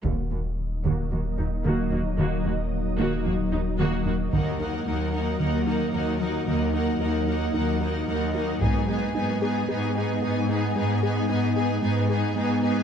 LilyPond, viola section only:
\new Staff \with { instrumentName = "Viola section" } { \time 4/4 \key ees \minor \tempo 4 = 112 <bes ges'>8 <bes ges'>8 r8 <bes ges'>8 <bes ges'>8 <ges ees'>8 <bes ges'>8 <bes ges'>8 | <bes ges'>8 <bes ges'>8 r8 <bes ges'>8 <bes ges'>8 <ges ees'>8 <bes ges'>8 <bes ges'>8 | <bes ees'>8 <bes ees'>8 <bes ees'>8 <bes ees'>8 <bes ees'>8 <bes ees'>8 <bes ees'>8 <bes ees'>8 | <bes ees'>8 <bes ees'>8 <bes ees'>8 <bes ees'>8 <bes ees'>8 <bes ees'>8 <bes ees'>8 <bes ees'>8 |
<ces' ees'>8 <ces' ees'>8 <ces' ees'>8 <ces' ees'>8 <ces' ees'>8 <ces' ees'>8 <ces' ees'>8 <ces' ees'>8 | <ces' ees'>8 <ces' ees'>8 <ces' ees'>8 <ces' ees'>8 <ces' ees'>8 <ces' ees'>8 <ces' ees'>8 <ces' ees'>8 | }